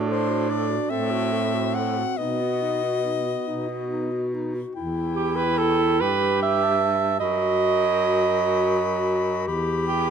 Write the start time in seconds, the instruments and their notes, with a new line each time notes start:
Already playing: baritone saxophone A2, alto saxophone D4, clarinet F#4
0.09 clarinet A4, soprano saxophone C5
0.29 clarinet F#4
0.49 clarinet A4, soprano saxophone D5
0.70 clarinet F#4
0.90 baritone saxophone A2, alto saxophone C4, clarinet A4, soprano saxophone E5
1.11 clarinet F#4
1.32 clarinet A4
1.54 clarinet F#4
1.75 clarinet A4, soprano saxophone F#5
1.98 clarinet F#4
2.18 baritone saxophone B2, alto saxophone B3, clarinet D#4, soprano saxophone D#5
2.41 clarinet F#4
2.62 clarinet D#4
2.83 clarinet F#4
3.05 clarinet D#4
3.26 clarinet F#4
3.47 baritone saxophone B2, clarinet D#4
3.68 clarinet F#4
3.90 clarinet D#4
4.12 clarinet F#4
4.34 clarinet D#4
4.55 clarinet F#4
4.75 baritone saxophone E2, clarinet E4, soprano saxophone G5
5.15 alto saxophone G4
5.36 alto saxophone B4
5.58 alto saxophone A4
6.01 baritone saxophone G2, clarinet G4, alto saxophone B4, soprano saxophone G5
6.42 alto saxophone E5
6.63 soprano saxophone A5
7.20 baritone saxophone F#2, clarinet F#4, alto saxophone D#5, soprano saxophone B5
9.48 baritone saxophone E2, clarinet G4, soprano saxophone B5
9.87 alto saxophone G4